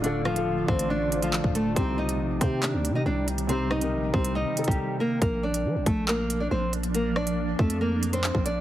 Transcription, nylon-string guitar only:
\new Staff \with { instrumentName = "Nylon-string guitar" } { \time 4/4 \key c \dorian \tempo 4 = 139 <d' d''>8 <f f'>4 <c' c''>8 <d' d''>8. <f f'>8. <a a'>8 | <c' c''>8 <ees' ees''>4 <c' c''>8 <d' d''>8. <ees' ees''>16 <d' d''>8 r8 | <c' c''>8 <ees' ees''>4 <c' c''>8 <ees' ees''>8. <g g'>8. <bes bes'>8 | <bes bes'>8 <d' d''>4 <a a'>8 <bes bes'>8. <d' d''>16 <c' c''>8 r8 |
<bes bes'>8 <d' d''>4 <a a'>8 <bes bes'>8. <c' c''>8. <d' d''>8 | }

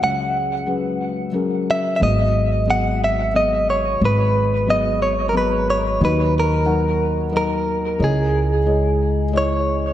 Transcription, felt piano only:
<<
  \new Staff \with { instrumentName = "Felt piano" } { \time 3/4 \key gis \minor \tempo 4 = 90 <fis cis' gis' cis''>4 <fis cis' gis' b'>4 <fis cis' gis' ais'>4 | <fis b gis' dis''>4 <fis b gis' dis''>4 <fis b gis' dis''>4~ | <fis b gis' dis''>4 <fis b gis' dis''>4 <fis b gis' dis''>4 | <fis dis' fis' dis''>4 <fis dis' ais' fis''>4 <fis dis' ais' dis''>4 |
<gis e' cis'' dis''>4 <gis e' cis'' dis''>4 <gis e' cis'' dis''>4 | }
  \new Staff \with { instrumentName = "Felt piano" } { \clef bass \time 3/4 \key gis \minor <cis, cis>2. | <gis,, gis,>2. | <gis,, gis,>2. | <dis, dis>2. |
<cis, cis>2. | }
>>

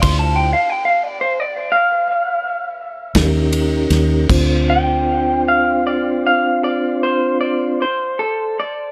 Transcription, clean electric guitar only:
\new Staff \with { instrumentName = "Clean electric guitar" } { \time 12/8 \key d \minor \tempo 4. = 51 <d'' c'''>16 a''16 g''16 f''16 g''16 f''16 d''16 c''16 d''8 f''2 r4. | r8 g''4 f''8 d''8 f''8 d''8 c''8 d''8 c''8 a'8 d''8 | }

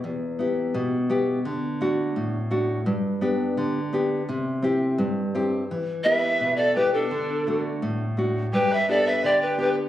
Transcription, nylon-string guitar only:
\new Staff \with { instrumentName = "Nylon-string guitar" } { \time 2/4 \key e \minor \tempo 4 = 85 e,8 <b e' g'>8 b,8 <b e' g'>8 | d8 <a d' fis'>8 a,8 <a d' fis'>8 | g,8 <b d' g'>8 d8 <b d' g'>8 | c8 <c' e' g'>8 g,8 <c' e' g'>8 |
e8 <b e' g'>8 b,8 <b e' g'>8 | d8 <a d' fis'>8 a,8 <a d' fis'>8 | g,8 <b d' g'>8 d8 <b d' g'>8 | }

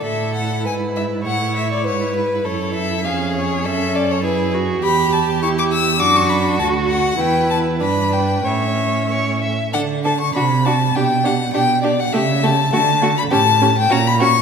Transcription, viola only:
\new Staff \with { instrumentName = "Viola" } { \time 2/4 \key a \major \tempo 4 = 101 e'2~ | e'2~ | e'4 cis'4 | cis'4 e'8 fis'8 |
\key d \major g'4 e'4 | d'4 fis'4 | e'4 d'4 | cis'4. r8 |
d'8 d'8 d'8 d'8 | d'8 d'8 d'8 d'8 | a8 a8 a8 a8 | cis'8 cis'8 cis'8 cis'8 | }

